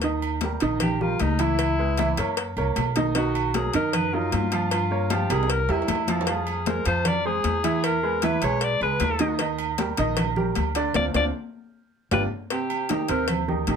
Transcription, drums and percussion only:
0.02 cowbell loud
0.02 high conga soft
0.02 low agogo medium
0.22 high conga soft
0.22 low agogo loud
0.41 cowbell medium
0.41 high conga medium
0.60 cowbell medium
0.60 high conga soft
0.60 low agogo medium
0.80 cowbell loud
0.80 high conga soft
0.80 low conga medium
0.80 low agogo loud
1.01 high conga soft
1.01 low conga medium
1.20 cowbell medium
1.20 high conga medium
1.20 low agogo medium
1.39 cowbell medium
1.39 low agogo medium
1.59 cowbell loud
1.59 low agogo loud
1.80 high conga soft
1.98 cowbell medium
1.98 high conga loud
1.98 low agogo medium
2.17 cowbell medium
2.17 low agogo loud
2.37 cowbell loud
2.37 high conga soft
2.57 high conga soft
2.57 low agogo medium
2.76 cowbell medium
2.76 high conga medium
2.76 low agogo loud
2.96 cowbell medium
2.96 high conga medium
3.15 cowbell loud
3.15 high conga soft
3.15 low agogo medium
3.35 high conga soft
3.35 low agogo loud
3.54 cowbell medium
3.54 high conga medium
3.73 cowbell medium
3.73 high conga soft
3.73 low agogo medium
3.93 cowbell loud
3.93 high conga soft
3.93 low conga medium
3.93 low agogo loud
4.13 high conga soft
4.32 cowbell medium
4.32 high conga medium
4.32 low agogo medium
4.52 cowbell medium
4.52 low agogo medium
4.71 cowbell loud
4.71 high conga soft
4.71 low agogo loud
4.91 high conga soft
5.10 cowbell medium
5.10 high conga loud
5.10 low agogo medium
5.30 cowbell medium
5.30 high timbale medium
5.30 low agogo loud
5.43 high timbale medium
5.50 cowbell loud
5.50 high conga soft
5.69 high conga soft
5.69 low timbale loud
5.69 low agogo medium
5.82 low timbale medium
5.88 cowbell medium
5.88 high conga medium
5.88 low agogo loud
5.95 low timbale medium
6.08 cowbell medium
6.08 high conga medium
6.21 low timbale loud
6.27 cowbell loud
6.27 high conga soft
6.27 low agogo medium
6.47 high conga soft
6.47 low agogo loud
6.66 cowbell medium
6.66 high conga loud
6.85 cowbell medium
6.85 high conga soft
6.85 low agogo medium
7.05 cowbell loud
7.05 high conga soft
7.05 low conga medium
7.05 low agogo loud
7.25 high conga soft
7.44 cowbell medium
7.44 high conga medium
7.44 low agogo medium
7.64 cowbell medium
7.64 high conga medium
7.64 low agogo medium
7.84 cowbell loud
7.84 low agogo loud
8.04 high conga soft
8.22 cowbell medium
8.22 high conga loud
8.22 low agogo medium
8.42 cowbell medium
8.42 low agogo loud
8.61 cowbell loud
8.61 high conga soft
8.81 high conga soft
8.81 low agogo medium
9.00 cowbell medium
9.00 high conga medium
9.00 low timbale medium
9.00 low agogo loud
9.19 cowbell medium
9.19 high conga medium
9.39 cowbell loud
9.39 high conga soft
9.39 low agogo medium
9.59 high conga soft
9.59 low agogo loud
9.78 cowbell medium
9.78 high conga loud
9.97 cowbell medium
9.97 high conga soft
9.97 low agogo medium
10.17 cowbell loud
10.17 high conga soft
10.17 low conga medium
10.17 low agogo loud
10.36 high conga soft
10.36 low conga medium
10.55 cowbell medium
10.55 high conga medium
10.55 low agogo medium
10.75 cowbell medium
10.75 low agogo medium
10.94 cowbell loud
10.94 high conga loud
10.94 high timbale loud
11.14 cowbell loud
11.14 high conga loud
11.14 high timbale loud
12.11 cowbell loud
12.11 high conga loud
12.11 high timbale loud
12.50 cowbell loud
12.50 high conga soft
12.50 low agogo medium
12.70 high conga soft
12.70 low agogo loud
12.89 cowbell medium
12.89 high conga medium
13.08 cowbell medium
13.08 high conga soft
13.08 low agogo medium
13.28 cowbell loud
13.28 high conga soft
13.28 low conga medium
13.28 low agogo loud
13.49 high conga soft
13.49 low conga medium
13.67 cowbell medium
13.67 high conga medium
13.67 low agogo medium

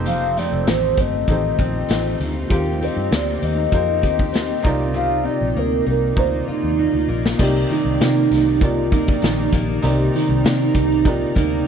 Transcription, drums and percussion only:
0.06 closed hi-hat medium
0.38 closed hi-hat medium
0.67 snare loud
0.67 closed hi-hat medium
0.98 kick medium
0.98 closed hi-hat medium
1.28 kick medium
1.28 closed hi-hat medium
1.59 kick medium
1.59 closed hi-hat medium
1.89 snare medium
1.89 closed hi-hat medium
2.20 closed hi-hat medium
2.50 kick loud
2.50 closed hi-hat medium
2.82 closed hi-hat medium
3.12 snare loud
3.12 closed hi-hat medium
3.42 closed hi-hat medium
3.72 kick medium
3.72 closed hi-hat medium
4.03 kick medium
4.03 closed hi-hat medium
4.19 kick medium
4.33 snare loud
4.33 closed hi-hat medium
4.65 kick loud
4.65 closed hi-hat medium
6.17 kick medium
7.26 snare medium
7.39 kick loud
7.39 crash loud
7.71 closed hi-hat medium
8.01 snare loud
8.01 closed hi-hat loud
8.31 snare soft
8.31 closed hi-hat medium
8.61 kick medium
8.61 closed hi-hat medium
8.92 kick medium
8.92 closed hi-hat medium
9.08 kick loud
9.22 snare loud
9.22 closed hi-hat medium
9.53 kick medium
9.53 closed hi-hat medium
9.84 closed hi-hat loud
10.15 closed hi-hat medium
10.45 snare loud
10.45 closed hi-hat medium
10.75 kick medium
10.75 closed hi-hat medium
10.92 closed hi-hat medium
11.05 kick loud
11.05 closed hi-hat medium
11.20 closed hi-hat medium
11.36 kick medium
11.36 closed hi-hat medium

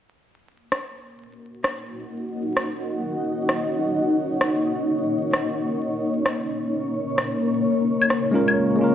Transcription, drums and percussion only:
0.72 cross-stick medium
1.64 cross-stick loud
2.57 cross-stick loud
3.49 cross-stick loud
4.41 cross-stick loud
5.33 cross-stick loud
6.26 cross-stick loud
7.18 cross-stick loud
8.02 claves medium
8.10 cross-stick loud
8.48 claves medium

